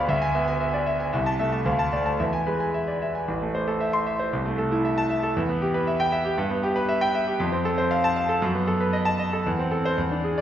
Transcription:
Already playing: D2 B3 D5 E5 F5 B5
0.09 D2 E5
0.22 G#5
0.35 B3 E5
0.48 G#5
0.60 E5
0.74 D5
0.86 E5
1.00 G#5
1.13 C2 E5
1.26 A5
1.40 A3 E5
1.52 A5
1.66 D2 F5
1.79 A5
1.93 A3 D5
2.06 A5
2.20 E2 E5
2.33 G#5
2.47 G#3 B4
2.60 G#5
2.74 E5
2.88 D5
3.02 E5
3.15 G#5
3.28 A1
3.42 A3
3.55 C5
3.68 A4
3.80 E5
3.93 C6
4.07 E5
4.19 C5
4.33 C2
4.46 A3
4.58 A4
4.72 E4
4.85 E5
4.98 A5
5.10 E5
5.23 A4
5.37 E2
5.49 B3
5.62 G4
5.74 B4
5.87 E5
6.00 G5
6.12 E5
6.25 G4
6.38 G2
6.50 B3
6.63 G4
6.76 B4
6.89 E5
7.01 G5
7.15 E5
7.27 G4
7.40 F2
7.52 C4
7.65 A4
7.78 C5
7.91 F5
8.04 A5
8.16 F5
8.29 A4
8.42 F#2
8.55 B3
8.68 A4
8.80 B4
8.93 D#5
9.05 A5
9.19 D#5
9.33 A4
9.46 E2
9.59 C4
9.71 A4
9.85 C5
9.98 E2
10.11 D4
10.24 G#4
10.38 D5

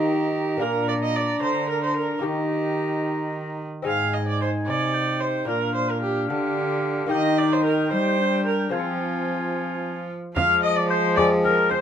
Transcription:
Already playing: D#3 A#3 D#4 G4 A#5
0.57 A#3 D4 F4 A#5
0.61 A#2 A#4
0.89 D5
1.03 D#5
1.16 D5
1.41 D3 C5
1.70 A#4
1.84 C5
1.97 A#4
2.19 A#3 D#4 G4 A#5
2.23 D#3 D#4 G4
3.82 G#2 C4 D#4 G#4
3.87 G#2 F5 G#5
4.14 D#5
4.28 D5
4.42 C5
4.67 C3 D5
4.94 G5
5.21 C5
5.45 A#2 A#3 D4 F4 A#4 F5
5.50 A#2
5.75 C5
5.90 A#4
6.03 G4
6.30 D3 G4
7.06 D#3 A#3 D#4 G4
7.10 D#3 D#5 G5
7.38 D5
7.53 C5
7.65 A#4
7.91 G3 C5
8.19 D4
8.46 A#4
8.69 F3 G#3 C4 F4 G#5
8.73 F3 F4
10.36 F3 G#3 F5, frame drum
10.63 D#5
10.76 D5
10.89 C5
11.16 G#3 C4 G#4 D5, frame drum
11.44 A#4, frame drum
11.70 C5, frame drum

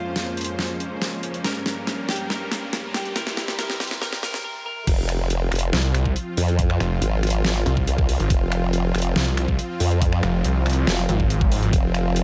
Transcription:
Already playing: F2 F3 G#3 A#3 C#4 F4 C5, riser
0.16 snare, closed hi-hat
0.37 closed hi-hat
0.41 closed hi-hat
0.45 closed hi-hat
0.59 snare
0.80 closed hi-hat
1.02 snare, closed hi-hat
1.23 closed hi-hat
1.34 closed hi-hat
1.44 G2 G3 G4 A#4, snare, closed hi-hat
1.66 snare, closed hi-hat
1.86 C6, snare, closed hi-hat
2.09 G4, snare, closed hi-hat
2.12 closed hi-hat
2.16 closed hi-hat
2.22 A#5
2.30 A#4, snare
2.52 snare, closed hi-hat
2.73 snare, closed hi-hat
2.94 G4, snare, closed hi-hat
3.05 closed hi-hat
3.16 C2 C3 G3 E4 G4 A#4, snare, closed hi-hat
3.27 snare
3.37 snare, closed hi-hat
3.48 snare
3.59 A#4, snare, closed hi-hat
3.70 snare
3.80 snare, closed hi-hat
3.84 closed hi-hat
3.87 snare, closed hi-hat
4.02 A#4, snare
4.13 snare
4.23 A#4, snare, closed hi-hat
4.34 snare
4.44 A#4
4.66 A#4
4.87 F1 F3 C4 F4, kick, closed hi-hat, crash
5.09 finger snap, closed hi-hat
5.30 closed hi-hat
5.52 F1 F5, finger snap, closed hi-hat
5.55 closed hi-hat
5.59 closed hi-hat
5.73 C2, snare
5.95 finger snap, closed hi-hat
6.06 kick
6.16 closed hi-hat
6.37 F2, open hi-hat
6.48 closed hi-hat
6.59 kick, closed hi-hat
6.70 finger snap
6.80 F1, finger snap, closed hi-hat
7.02 G#1, closed hi-hat
7.23 finger snap, closed hi-hat
7.27 closed hi-hat
7.30 closed hi-hat
7.45 snare
7.66 C2, closed hi-hat
7.77 kick
7.87 C2, closed hi-hat
7.98 kick
8.09 open hi-hat
8.20 G#1, closed hi-hat
8.30 F1, kick, closed hi-hat
8.52 finger snap, closed hi-hat
8.73 closed hi-hat
8.95 F1, finger snap, closed hi-hat
8.98 closed hi-hat
9.02 closed hi-hat
9.16 C2, snare
9.37 finger snap, closed hi-hat
9.48 kick
9.59 closed hi-hat
9.80 F2, open hi-hat
9.91 closed hi-hat
10.02 kick, closed hi-hat
10.13 finger snap
10.23 F1, finger snap, closed hi-hat
10.44 C2, closed hi-hat
10.66 finger snap, closed hi-hat
10.70 closed hi-hat
10.73 closed hi-hat
10.87 F1, snare
11.09 G#1, closed hi-hat
11.20 kick
11.30 closed hi-hat
11.41 kick
11.52 open hi-hat
11.63 closed hi-hat
11.73 F1 F4, kick, closed hi-hat
11.95 finger snap, closed hi-hat
12.16 closed hi-hat

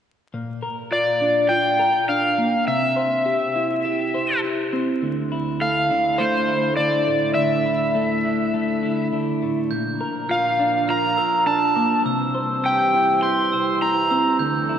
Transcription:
0.34 A#2
0.62 A#4
0.91 F4 D5
1.21 D4
1.49 F4 G5
1.79 A#4
2.09 D4 F5
2.38 A#3
2.67 C3 E5
2.96 C5
3.26 G4
3.56 E4
3.85 G4
4.14 C5
4.44 E4
4.73 C4
5.02 D2
5.32 E4
5.61 A3 F5
5.90 D3
6.18 A3 C5
6.48 E4
6.76 D3 D5
7.08 A2
7.34 D2 E5
7.65 E4
7.95 A3
8.24 D3
8.54 A3
8.83 E4
9.13 D3
9.42 A2
9.70 A#2 F3 A#3 D4 A#4 G6
10.01 A#4
10.29 F4 F5 F6
10.60 D4
10.88 F4 A#5 F6
11.17 A#4 E6
11.46 D4 A5
11.76 A#3 D6
12.06 C3 E3 G3 C4 C5 E6
12.35 C5
12.64 G4 G5 E6
12.94 E4
13.22 G4 C6 G6
13.52 C5 E6
13.82 E4 A#5
14.10 C4 E6
14.39 D2 F3 D4 A4 G6
14.69 E4

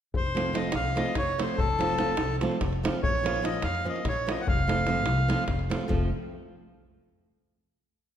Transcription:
0.14 F1 C5, davul low
0.26 davul high
0.35 F3 A3 C4 F4, davul high
0.46 davul high
0.53 F3 A3 C4 F4 D#5, davul high
0.64 davul high
0.72 C2 F5, davul high
0.85 davul high
0.96 F3 A3 C4 F4 D#5, davul high
1.06 davul high
1.15 F1 C#5, davul high, davul low
1.29 davul high
1.38 F3 A3 C4 F4 C5, davul high
1.49 davul high
1.58 F1 A4, davul low
1.70 davul high
1.79 F3 A3 C4 F4, davul high
1.89 davul high
1.98 F3 A3 C4 F4, davul high
2.09 davul high
2.17 C2, davul high
2.28 davul high
2.41 F3 A3 C4 F4, davul high
2.51 davul high
2.61 F1, davul high, davul low
2.73 davul high
2.83 F3 A3 C4 F4, davul high
3.03 A#1 C#5, davul low
3.15 davul high
3.23 F3 A#3 C#4 F4, davul high
3.36 davul high
3.42 F3 A#3 C#4 F4 D#5, davul high
3.54 davul high
3.62 F2 F5, davul high
3.75 davul high
3.84 F3 A#3 C#4 F4
3.89 D#5
3.96 davul high
4.05 A#1 C#5, davul high, davul low
4.27 F3 A#3 C#4 F4 D#5, davul high
4.39 F#5, davul high
4.47 F1 F5, davul low
4.59 davul high
4.67 F3 A3 C4 F4, davul high
4.78 davul high
4.87 F3 A3 C4 F4, davul high
4.97 davul high
5.06 C2, davul high
5.18 davul high
5.28 F3 A3 C4 F4, davul high
5.39 davul high
5.47 F1, davul high, davul low
5.59 davul high
5.70 F3 A3 C4 F4, davul high
5.81 davul high
5.88 F1 F3 A3 C4 F4, davul low

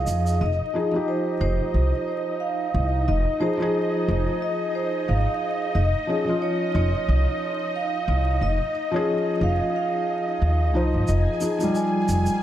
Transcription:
Already playing: F3 C#4 G#4 D#5 F5
0.07 F2, shaker
0.26 shaker
0.41 F1 D#5
0.73 F3 D#4 G#4
0.91 F3 D#4
0.96 G4
1.08 C5
1.41 F1 C5
1.74 C2
2.40 F5
2.74 C2
3.08 F1 D#5
3.40 F3 D#4 G#4 C5
3.57 F3 D#4
3.62 G#4
4.08 F1
4.42 D#5
4.75 C5
5.08 G#1 F5
5.75 F1 D#5
6.07 F3 C#4 G#4
6.25 F3 C#4
6.29 F4
6.42 C#5
6.75 F1 C#5
7.09 C2
7.76 F5
8.08 C2
8.41 F1 D#5
8.91 F3 C#4
8.96 G#4
9.41 F1 F5
9.76 F5
10.42 D#2
10.74 C2 F3 D#4 C5
10.94 G#1
11.08 F1 D#5 G#5, shaker
11.40 F3 D#4 G#4, shaker
11.58 F3 D#4, shaker
11.63 G3
11.75 G#5, shaker
12.09 F1, shaker
12.26 shaker

